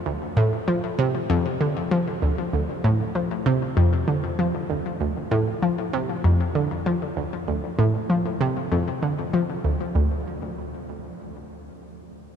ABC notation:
X:1
M:4/4
L:1/16
Q:1/4=97
K:Dm
V:1 name="Synth arpeggio sound" clef=bass
D,,2 A,, z F,2 C,2 F,,2 D,2 F,2 D,,2 | D,,2 A,, z F,2 C,2 F,,2 D,2 F,2 D,,2 | D,,2 A,, z F,2 C,2 F,,2 D,2 F,2 D,,2 | D,,2 A,, z F,2 C,2 F,,2 D,2 F,2 D,,2 |
D,,2 z12 z2 |]